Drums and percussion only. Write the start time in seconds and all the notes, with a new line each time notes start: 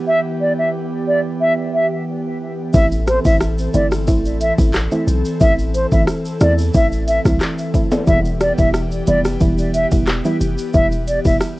2.74 kick, shaker
2.92 shaker
3.07 cross-stick, closed hi-hat, shaker
3.25 kick, shaker
3.41 cross-stick, shaker
3.58 shaker
3.73 closed hi-hat, shaker
3.92 cross-stick, shaker
4.07 kick, shaker
4.25 shaker
4.41 closed hi-hat, shaker
4.59 kick, shaker
4.73 cross-stick, clap, shaker
4.92 shaker
5.08 closed hi-hat, shaker
5.25 shaker
5.40 kick, shaker
5.59 shaker
5.74 closed hi-hat, shaker
5.92 kick, shaker
6.07 cross-stick, shaker
6.25 shaker
6.40 cross-stick, closed hi-hat, shaker
6.58 shaker
6.74 kick, shaker
6.92 shaker
7.08 closed hi-hat, shaker
7.25 kick, cross-stick, shaker
7.40 cross-stick, clap, shaker
7.58 shaker
7.74 kick, closed hi-hat, shaker
7.92 high timbale, shaker
8.07 kick, shaker
8.25 shaker
8.41 cross-stick, closed hi-hat, shaker
8.58 kick, shaker
8.74 cross-stick, shaker
8.91 shaker
9.07 closed hi-hat, shaker
9.25 cross-stick, shaker
9.40 kick, shaker
9.58 shaker
9.74 closed hi-hat, shaker
9.91 kick, shaker
10.06 cross-stick, clap, shaker
10.25 shaker
10.40 closed hi-hat, shaker
10.58 shaker
10.73 kick, shaker
10.92 shaker
11.07 closed hi-hat, shaker
11.25 kick, shaker
11.41 cross-stick, shaker